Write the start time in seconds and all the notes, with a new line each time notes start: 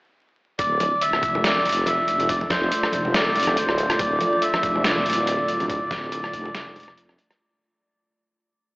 0.59 D1 A3 F4 D5, kick, closed hi-hat, muted conga
0.80 closed hi-hat, muted conga, high conga
1.01 E5, closed hi-hat
1.13 cross-stick, muted conga
1.23 F1, kick, closed hi-hat
1.35 muted conga, high conga, low conga
1.44 D5, snare, closed hi-hat
1.56 high conga
1.65 closed hi-hat, muted conga
1.69 closed hi-hat
1.72 closed hi-hat
1.86 E5, closed hi-hat, muted conga
2.08 closed hi-hat
2.20 closed hi-hat, muted conga, low conga
2.29 D5, kick, closed hi-hat
2.41 muted conga
2.50 C5, kick, snare, closed hi-hat, high conga
2.71 closed hi-hat, muted conga
2.83 cross-stick
2.92 F1 C5, closed hi-hat, muted conga
3.05 high conga, low conga
3.14 D5, snare, closed hi-hat
3.25 muted conga
3.35 closed hi-hat, low conga
3.39 closed hi-hat
3.43 closed hi-hat
3.47 cross-stick, muted conga, low conga
3.57 D1 C5, closed hi-hat
3.69 cross-stick
3.78 closed hi-hat, muted conga
3.90 cross-stick, closed hi-hat
3.99 D5, kick, closed hi-hat, muted conga
4.21 closed hi-hat, high conga
4.33 muted conga
4.42 E5, closed hi-hat
4.54 cross-stick, muted conga
4.63 F1, kick, closed hi-hat
4.75 high conga, low conga
4.84 D5, snare, closed hi-hat, muted conga
4.96 high conga
5.06 D1, closed hi-hat, muted conga
5.10 closed hi-hat
5.13 closed hi-hat
5.27 closed hi-hat
5.39 muted conga
5.48 D1, closed hi-hat
5.60 closed hi-hat, muted conga, low conga
5.70 D5, kick, closed hi-hat
5.91 kick, snare, closed hi-hat, muted conga, high conga
6.12 closed hi-hat, muted conga
6.24 cross-stick
6.33 F1, kick, closed hi-hat
6.45 muted conga, high conga, low conga
6.55 F1, snare, closed hi-hat
6.66 muted conga
6.76 closed hi-hat, low conga
6.80 closed hi-hat
6.83 closed hi-hat
6.88 cross-stick, low conga
6.97 closed hi-hat, muted conga
7.09 cross-stick
7.18 closed hi-hat, muted conga
7.31 cross-stick, closed hi-hat